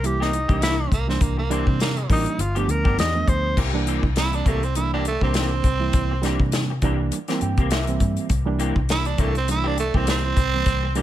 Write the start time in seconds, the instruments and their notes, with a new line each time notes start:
Already playing: fingered electric bass C2
0.04 reed electric piano E3 G3 A#3 E4, tenor saxophone G4, muted clean electric guitar stroke, closed hi-hat
0.20 clean electric guitar E3 A#3 C4 G4, tenor saxophone D#4, snare
0.33 muted clean electric guitar stroke, closed hi-hat
0.48 fingered electric bass C2, reed electric piano E3 G3 A#3 D4, clean electric guitar A#3 C4 G4, kick, closed hi-hat
0.61 clean electric guitar E3 A#3 C4 G4, tenor saxophone E4, snare, closed hi-hat
0.78 muted clean electric guitar stroke
0.91 fingered electric bass C2, tenor saxophone A#3, muted clean electric guitar stroke, kick, closed hi-hat
1.07 reed electric piano E3 G3 A#3 D4, tenor saxophone C4, snare
1.21 fingered electric bass C2, tenor saxophone A#3, kick, closed hi-hat
1.37 tenor saxophone A#3, muted clean electric guitar stroke
1.49 reed electric piano E3 G3 A#3 D4, clean electric guitar E3 A#3 C4 G4, tenor saxophone C4, closed hi-hat
1.67 fingered electric bass C3, muted clean electric guitar stroke, kick
1.80 tenor saxophone A#3, snare, closed hi-hat
1.97 muted clean electric guitar stroke, closed hi-hat
2.10 fingered electric bass A1, clean electric guitar E3 A#3 C4 G4, reed electric piano E3 G3 A#3 D4, tenor saxophone D#4, kick, open hi-hat
2.26 muted clean electric guitar stroke, closed hi-hat
2.38 fingered electric bass G1, tenor saxophone F4, muted clean electric guitar stroke, closed hi-hat
2.55 reed electric piano F3 A3 B3 D4, clean electric guitar F3 B3 D4 G4, tenor saxophone G4, closed hi-hat
2.68 fingered electric bass D2, tenor saxophone A#4, muted clean electric guitar stroke, closed hi-hat
2.84 fingered electric bass G1, clean electric guitar B3 D4 G4, kick
2.97 fingered electric bass E2, clean electric guitar F3 B3 D4 G4, tenor saxophone D#5, snare, closed hi-hat
3.14 reed electric piano F3 A3 B3 D4, muted clean electric guitar stroke
3.28 fingered electric bass D2, tenor saxophone C5, muted clean electric guitar stroke, kick, closed hi-hat
3.57 fingered electric bass C2, clean electric guitar E3 A#3 C4 G4, kick, crash
3.73 reed electric piano E3 G3 A#3 D4, muted clean electric guitar stroke
3.87 clean electric guitar E3 A#3 C4 G4, closed hi-hat
4.03 fingered electric bass C2, muted clean electric guitar stroke, kick
4.16 reed electric piano E3 G3 A#3 C4, tenor saxophone E4, snare, closed hi-hat
4.33 tenor saxophone D4, muted clean electric guitar stroke, closed hi-hat
4.46 fingered electric bass C2, clean electric guitar E3 A#3 C4 G4, tenor saxophone A3, kick, closed hi-hat
4.63 tenor saxophone C4, muted clean electric guitar stroke, closed hi-hat
4.75 reed electric piano E3 G3 A#3 D4, tenor saxophone E4, muted clean electric guitar stroke, closed hi-hat
4.94 clean electric guitar E3 A#3 C4 G4, tenor saxophone D4
5.05 tenor saxophone A3, muted clean electric guitar stroke, closed hi-hat
5.21 fingered electric bass C2, reed electric piano E3 G3 A#3 D4, tenor saxophone C4, clean electric guitar C4 G4, kick
5.25 clean electric guitar A#3
5.34 clean electric guitar E3 A#3, tenor saxophone C4, snare, closed hi-hat
5.38 clean electric guitar C4 G4
5.53 muted clean electric guitar stroke
5.64 fingered electric bass C2, muted clean electric guitar stroke, kick, closed hi-hat
5.79 reed electric piano E3 G3 A#3 E4
5.93 fingered electric bass C2, kick, closed hi-hat
6.11 muted clean electric guitar stroke
6.22 reed electric piano E3 G3 A#3 D4, clean electric guitar E3 A#3 C4 G4, snare, closed hi-hat
6.40 fingered electric bass C3, muted clean electric guitar stroke, kick
6.52 snare, closed hi-hat
6.70 muted clean electric guitar stroke
6.82 fingered electric bass C2, reed electric piano E3 G3 A#3 D4, clean electric guitar E3 A#3 C4 G4, kick, closed hi-hat
7.00 muted clean electric guitar stroke
7.12 muted clean electric guitar stroke, closed hi-hat
7.28 reed electric piano E3 G3 A#3 C4, clean electric guitar E3 A#3 C4 G4, snare, closed hi-hat
7.41 fingered electric bass G2, reed electric piano G5, muted clean electric guitar stroke, closed hi-hat
7.57 fingered electric bass C2, clean electric guitar A#3 C4 G4, kick, closed hi-hat
7.70 clean electric guitar E3 A#3 C4 G4, reed electric piano E5, snare, closed hi-hat
7.87 reed electric piano E3 G3 A#3 C4, muted clean electric guitar stroke, closed hi-hat
8.00 fingered electric bass G2, muted clean electric guitar stroke, kick, closed hi-hat
8.16 closed hi-hat
8.29 fingered electric bass C2, kick, closed hi-hat
8.45 reed electric piano E3 G3 A#3 D4, muted clean electric guitar stroke
8.59 clean electric guitar E3 A#3 C4 G4, closed hi-hat
8.75 fingered electric bass C2, muted clean electric guitar stroke, kick
8.89 reed electric piano E3 G3 A#3 D4, tenor saxophone E4, snare, closed hi-hat
9.05 tenor saxophone D4, muted clean electric guitar stroke, closed hi-hat
9.18 fingered electric bass C2, clean electric guitar E3 A#3 C4 G4, tenor saxophone A3, kick, closed hi-hat
9.35 tenor saxophone C4, muted clean electric guitar stroke, closed hi-hat
9.48 reed electric piano E3 G3 A#3 D4, tenor saxophone E4, muted clean electric guitar stroke, closed hi-hat
9.64 clean electric guitar E3 A#3 C4 G4
9.68 tenor saxophone D4
9.77 tenor saxophone A3, muted clean electric guitar stroke, closed hi-hat
9.94 fingered electric bass C2, reed electric piano E3 G3 A#3 E4, clean electric guitar A#3 C4 G4, tenor saxophone C4, kick
10.07 clean electric guitar E3 A#3 C4 G4, snare, closed hi-hat
10.11 tenor saxophone C4
10.24 muted clean electric guitar stroke
10.36 fingered electric bass C2, muted clean electric guitar stroke, kick, closed hi-hat
10.53 reed electric piano E3 G3 A#3 C4
10.65 fingered electric bass C2, kick, closed hi-hat
10.83 muted clean electric guitar stroke
10.95 reed electric piano E3 G3 A#3 D4, clean electric guitar E3 A#3 C4 G4, closed hi-hat